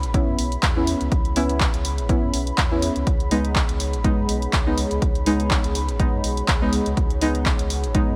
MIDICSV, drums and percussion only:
0, 0, Header, 1, 2, 480
1, 0, Start_track
1, 0, Key_signature, 4, "minor"
1, 0, Tempo, 487805
1, 1099, Time_signature, 4, 2, 24, 8
1, 8028, End_track
2, 0, Start_track
2, 0, Title_t, "Drums"
2, 31, Note_on_c, 9, 42, 51
2, 130, Note_off_c, 9, 42, 0
2, 139, Note_on_c, 9, 36, 123
2, 140, Note_on_c, 9, 42, 64
2, 238, Note_off_c, 9, 36, 0
2, 238, Note_off_c, 9, 42, 0
2, 380, Note_on_c, 9, 46, 105
2, 478, Note_off_c, 9, 46, 0
2, 511, Note_on_c, 9, 42, 49
2, 609, Note_off_c, 9, 42, 0
2, 619, Note_on_c, 9, 36, 119
2, 619, Note_on_c, 9, 39, 120
2, 619, Note_on_c, 9, 42, 63
2, 717, Note_off_c, 9, 39, 0
2, 718, Note_off_c, 9, 36, 0
2, 718, Note_off_c, 9, 42, 0
2, 859, Note_on_c, 9, 46, 108
2, 957, Note_off_c, 9, 46, 0
2, 991, Note_on_c, 9, 42, 49
2, 1089, Note_off_c, 9, 42, 0
2, 1099, Note_on_c, 9, 36, 126
2, 1099, Note_on_c, 9, 42, 59
2, 1197, Note_off_c, 9, 42, 0
2, 1198, Note_off_c, 9, 36, 0
2, 1230, Note_on_c, 9, 42, 36
2, 1329, Note_off_c, 9, 42, 0
2, 1339, Note_on_c, 9, 46, 103
2, 1437, Note_off_c, 9, 46, 0
2, 1470, Note_on_c, 9, 42, 47
2, 1569, Note_off_c, 9, 42, 0
2, 1578, Note_on_c, 9, 39, 113
2, 1579, Note_on_c, 9, 36, 116
2, 1676, Note_off_c, 9, 39, 0
2, 1678, Note_off_c, 9, 36, 0
2, 1710, Note_on_c, 9, 42, 57
2, 1808, Note_off_c, 9, 42, 0
2, 1819, Note_on_c, 9, 46, 110
2, 1917, Note_off_c, 9, 46, 0
2, 1950, Note_on_c, 9, 42, 47
2, 2049, Note_off_c, 9, 42, 0
2, 2059, Note_on_c, 9, 36, 119
2, 2059, Note_on_c, 9, 42, 60
2, 2157, Note_off_c, 9, 42, 0
2, 2158, Note_off_c, 9, 36, 0
2, 2298, Note_on_c, 9, 46, 107
2, 2397, Note_off_c, 9, 46, 0
2, 2430, Note_on_c, 9, 42, 47
2, 2528, Note_off_c, 9, 42, 0
2, 2538, Note_on_c, 9, 39, 113
2, 2539, Note_on_c, 9, 36, 117
2, 2539, Note_on_c, 9, 42, 62
2, 2636, Note_off_c, 9, 39, 0
2, 2637, Note_off_c, 9, 42, 0
2, 2638, Note_off_c, 9, 36, 0
2, 2779, Note_on_c, 9, 46, 110
2, 2877, Note_off_c, 9, 46, 0
2, 2910, Note_on_c, 9, 42, 50
2, 3008, Note_off_c, 9, 42, 0
2, 3019, Note_on_c, 9, 36, 116
2, 3019, Note_on_c, 9, 42, 60
2, 3117, Note_off_c, 9, 42, 0
2, 3118, Note_off_c, 9, 36, 0
2, 3150, Note_on_c, 9, 42, 35
2, 3249, Note_off_c, 9, 42, 0
2, 3259, Note_on_c, 9, 46, 95
2, 3357, Note_off_c, 9, 46, 0
2, 3391, Note_on_c, 9, 42, 47
2, 3489, Note_off_c, 9, 42, 0
2, 3498, Note_on_c, 9, 39, 111
2, 3499, Note_on_c, 9, 36, 110
2, 3597, Note_off_c, 9, 39, 0
2, 3598, Note_off_c, 9, 36, 0
2, 3630, Note_on_c, 9, 42, 58
2, 3729, Note_off_c, 9, 42, 0
2, 3739, Note_on_c, 9, 46, 110
2, 3838, Note_off_c, 9, 46, 0
2, 3871, Note_on_c, 9, 42, 50
2, 3969, Note_off_c, 9, 42, 0
2, 3979, Note_on_c, 9, 36, 117
2, 3980, Note_on_c, 9, 42, 59
2, 4078, Note_off_c, 9, 36, 0
2, 4078, Note_off_c, 9, 42, 0
2, 4220, Note_on_c, 9, 46, 104
2, 4318, Note_off_c, 9, 46, 0
2, 4351, Note_on_c, 9, 42, 49
2, 4450, Note_off_c, 9, 42, 0
2, 4459, Note_on_c, 9, 36, 110
2, 4459, Note_on_c, 9, 39, 111
2, 4460, Note_on_c, 9, 42, 60
2, 4557, Note_off_c, 9, 39, 0
2, 4558, Note_off_c, 9, 36, 0
2, 4558, Note_off_c, 9, 42, 0
2, 4700, Note_on_c, 9, 46, 99
2, 4798, Note_off_c, 9, 46, 0
2, 4831, Note_on_c, 9, 42, 51
2, 4930, Note_off_c, 9, 42, 0
2, 4939, Note_on_c, 9, 36, 112
2, 4940, Note_on_c, 9, 42, 59
2, 5038, Note_off_c, 9, 36, 0
2, 5038, Note_off_c, 9, 42, 0
2, 5071, Note_on_c, 9, 42, 35
2, 5169, Note_off_c, 9, 42, 0
2, 5179, Note_on_c, 9, 46, 94
2, 5278, Note_off_c, 9, 46, 0
2, 5311, Note_on_c, 9, 42, 52
2, 5410, Note_off_c, 9, 42, 0
2, 5418, Note_on_c, 9, 39, 109
2, 5419, Note_on_c, 9, 36, 111
2, 5517, Note_off_c, 9, 39, 0
2, 5518, Note_off_c, 9, 36, 0
2, 5551, Note_on_c, 9, 42, 58
2, 5650, Note_off_c, 9, 42, 0
2, 5659, Note_on_c, 9, 46, 103
2, 5758, Note_off_c, 9, 46, 0
2, 5791, Note_on_c, 9, 42, 51
2, 5889, Note_off_c, 9, 42, 0
2, 5900, Note_on_c, 9, 36, 116
2, 5900, Note_on_c, 9, 42, 65
2, 5998, Note_off_c, 9, 36, 0
2, 5998, Note_off_c, 9, 42, 0
2, 6140, Note_on_c, 9, 46, 95
2, 6238, Note_off_c, 9, 46, 0
2, 6271, Note_on_c, 9, 42, 51
2, 6369, Note_off_c, 9, 42, 0
2, 6379, Note_on_c, 9, 39, 111
2, 6379, Note_on_c, 9, 42, 63
2, 6380, Note_on_c, 9, 36, 116
2, 6477, Note_off_c, 9, 39, 0
2, 6478, Note_off_c, 9, 36, 0
2, 6478, Note_off_c, 9, 42, 0
2, 6619, Note_on_c, 9, 46, 95
2, 6717, Note_off_c, 9, 46, 0
2, 6751, Note_on_c, 9, 42, 50
2, 6849, Note_off_c, 9, 42, 0
2, 6859, Note_on_c, 9, 42, 60
2, 6860, Note_on_c, 9, 36, 110
2, 6958, Note_off_c, 9, 36, 0
2, 6958, Note_off_c, 9, 42, 0
2, 6991, Note_on_c, 9, 42, 38
2, 7089, Note_off_c, 9, 42, 0
2, 7099, Note_on_c, 9, 46, 93
2, 7198, Note_off_c, 9, 46, 0
2, 7231, Note_on_c, 9, 42, 52
2, 7329, Note_off_c, 9, 42, 0
2, 7338, Note_on_c, 9, 39, 108
2, 7340, Note_on_c, 9, 36, 105
2, 7437, Note_off_c, 9, 39, 0
2, 7438, Note_off_c, 9, 36, 0
2, 7470, Note_on_c, 9, 42, 62
2, 7569, Note_off_c, 9, 42, 0
2, 7579, Note_on_c, 9, 46, 98
2, 7677, Note_off_c, 9, 46, 0
2, 7711, Note_on_c, 9, 42, 51
2, 7809, Note_off_c, 9, 42, 0
2, 7819, Note_on_c, 9, 42, 71
2, 7820, Note_on_c, 9, 36, 112
2, 7917, Note_off_c, 9, 42, 0
2, 7918, Note_off_c, 9, 36, 0
2, 8028, End_track
0, 0, End_of_file